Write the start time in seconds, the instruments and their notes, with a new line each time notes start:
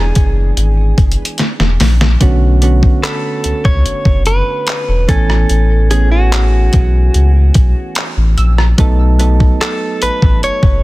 Already playing: sub bass E1, synth keys E3 G#3 B3 D4 G#4, clean electric guitar G#4
0.15 sub bass F#1, kick, closed hi-hat
0.57 sub bass G#1, closed hi-hat
0.98 sub bass F#1, kick, closed hi-hat
1.12 closed hi-hat
1.25 closed hi-hat
1.38 snare, closed hi-hat
1.60 sub bass E1, snare
1.80 sub bass A#1, snare, open hi-hat
2.01 snare
2.20 sub bass B1, synth keys D3 A3 B3 C#4 F#4, kick, closed hi-hat
2.62 synth keys D3 A3 B3 C#4 F#4, closed hi-hat
2.83 kick
3.03 clean electric guitar A4, synth pluck B5, clap, closed hi-hat
3.44 sub bass C#2, closed hi-hat
3.65 sub bass C#2, clean electric guitar C#5, kick
3.86 sub bass F#1, closed hi-hat
4.05 sub bass F#1, kick
4.26 clean electric guitar B4, closed hi-hat
4.67 clap, closed hi-hat
4.88 sub bass E1
5.08 sub bass A1, synth keys E3 A3 B3 C#4 G#5, clean electric guitar A4, kick, closed hi-hat
5.30 cross-stick
5.49 sub bass A1, closed hi-hat
5.90 synth keys E3 A3 B3 C#4 G#4, clean electric guitar G#4, closed hi-hat
6.12 clean electric guitar F#4
6.32 clap, closed hi-hat
6.73 sub bass B1, kick, closed hi-hat
7.14 sub bass C#2, closed hi-hat
7.54 sub bass B1, kick, closed hi-hat
7.95 clap, closed hi-hat
8.17 sub bass A1
8.38 sub bass A#1, synth pluck E6, closed hi-hat
8.58 cross-stick
8.78 sub bass B1, synth keys F#3 A3 B3 D#4 A4, kick, closed hi-hat
9.19 synth keys F#3 A3 B3 D#4 A4, closed hi-hat
9.40 kick
9.61 clean electric guitar A4, clap, closed hi-hat
10.02 sub bass A1, clean electric guitar B4, closed hi-hat
10.22 sub bass A1, kick
10.43 sub bass F#1, clean electric guitar C#5, closed hi-hat
10.63 sub bass F#1, kick